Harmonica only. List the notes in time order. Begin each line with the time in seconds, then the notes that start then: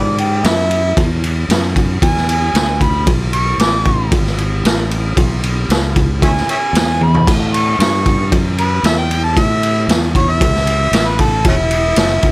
Already playing: D5
0.20 G4
0.46 E4
2.03 G#5
2.29 G#5
2.82 B5
3.34 C#6
3.60 D6
6.23 C#5 E5 G#5
6.50 C#5 E5 G#5
7.03 B5
7.55 C#6
7.80 C#6
8.60 B4
8.85 E5
8.98 G5
9.24 A5
9.39 E5
10.17 C#5
10.30 E5
11.08 B4
11.21 A4
11.48 A3 C#4 E4